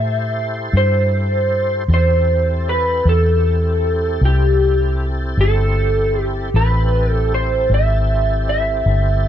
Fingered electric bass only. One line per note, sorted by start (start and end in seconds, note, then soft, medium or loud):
0.00 0.69 A2 medium
0.73 1.85 G2 medium
1.88 3.01 E2 medium
3.05 4.18 E2 medium
4.21 5.34 C2 medium
5.37 6.50 G1 medium
6.54 7.66 A1 medium
7.70 8.82 G#1 medium
8.86 9.28 G1 medium